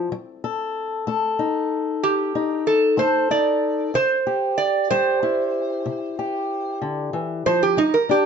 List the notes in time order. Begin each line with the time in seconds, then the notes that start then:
Already playing: F3 C4 A4
0.12 F#3
0.44 A4
1.07 A3 A4
1.39 D#4
2.03 G4
2.35 D#4
2.67 A4
2.97 A3 A4 C5
3.31 D#4 D5
3.94 C3 C5
4.27 G4
4.58 D5
4.91 G3 G4 C5
5.23 E4
5.86 C3
6.19 G4
6.82 D3
7.13 E3
7.46 F3 C5
7.63 G4
7.77 G3 D#4
7.94 A#4
8.09 D4 G4